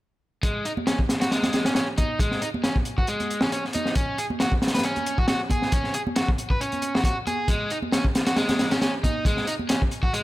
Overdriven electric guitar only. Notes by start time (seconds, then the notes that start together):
0.43 G#3
0.65 D#4
0.87 C#4
1.21 F#4
1.31 G#3
1.65 C#4
1.75 C#4
1.98 D#4
2.20 G#3
2.42 D#4
2.64 C#4
2.98 F#4
3.08 G#3
3.42 C#4
3.53 C#4
3.74 D#4
3.96 C#4
4.18 G#4
4.41 F#4
4.74 B4
4.85 C#4
5.18 F#4
5.28 F#4
5.51 G#4
5.73 C#4
5.95 G#4
6.17 F#4
6.50 B4
6.61 C#4
6.95 F#4
7.05 F#4
7.27 G#4
7.49 G#3
7.71 D#4
7.93 C#4
8.27 F#4
8.37 G#3
8.71 C#4
8.82 C#4
9.03 D#4
9.26 G#3
9.47 D#4
9.69 C#4
10.03 F#4
10.13 G#3